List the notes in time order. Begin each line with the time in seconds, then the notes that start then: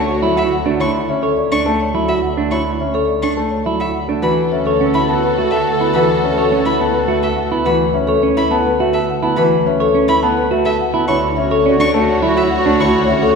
Already playing: D2 A3 F#4 C#5 A5
0.06 F#4 C#5
0.22 F#3 E4 E5
0.36 F#4 E5
0.52 F#5
0.66 A3 D4
0.80 D3 E4 C#5 C#6
1.09 C#4 E5
1.22 A4 C#5
1.37 D5
1.52 D4 C#6
1.66 A3 A5
1.80 C#5
1.94 F#3 E4 E5
2.09 F#4 E5
2.22 F#5
2.37 A3 D4
2.51 D3 E4 C#5 C#6
2.80 C#4 E5
2.94 A4 C#5
3.08 D5
3.23 D4 C#6
3.37 A3 A5
3.50 C#5
3.64 F#3 E4 E5
3.80 F#4 E5
3.94 F#5
4.08 A3 D4
4.22 D2 E3 F#4 A4 B4 B5
4.52 C#4 A4 E5
4.66 A4 C#5
4.81 C#4 A4 C#5
4.94 E4 B5
5.09 B3 A5
5.13 A4
5.24 B4
5.37 A3 F#4 E5
5.43 A4
5.51 A4 E5
5.67 F#5
5.72 A4
5.80 B3 E4
5.94 E3 F#4 B4 B5
6.01 A4
6.23 C#4 E5
6.31 A4
6.38 A4 C#5
6.52 C#4 C#5
6.62 A4
6.66 E4 B5
6.80 B3 A5
6.92 A4 B4
7.08 A3 F#4 E5
7.21 A4 E5
7.37 F#5
7.52 B3 E4
7.65 E3 F#4 B4 B5
7.93 C#4 E5
8.07 A4 C#5
8.22 C#4 C#5
8.37 E4 B5
8.51 B3 A5
8.65 B4
8.79 A3 F#4 E5
8.94 A4 E5
9.09 F#5
9.23 B3 E4 A5
9.37 E3 F#4 B4 B5
9.66 C#4 E5
9.80 A4 C#5
9.95 C#4 C#5
10.08 E4 B5
10.23 B3 A5
10.37 B4
10.51 A3 F#4 E5
10.66 A4 E5
10.81 F#5
10.94 B3 E4 A5
11.08 D2 D3 E4 F#4 C#5 C#6
11.37 C#4 F#4 E5
11.51 A4 C#5
11.65 C#4 F#4 D5
11.80 D4 C#6
11.94 A3 A5
11.99 F#4
12.09 C#5
12.22 F#3 E4 E5
12.28 F#4
12.37 F#4 E5
12.51 F#5
12.58 F#4
12.65 A3 D4 A5
12.80 D3 E4 C#5 C#6
12.88 F#4
13.08 C#4 E5
13.17 F#4
13.22 A4 C#5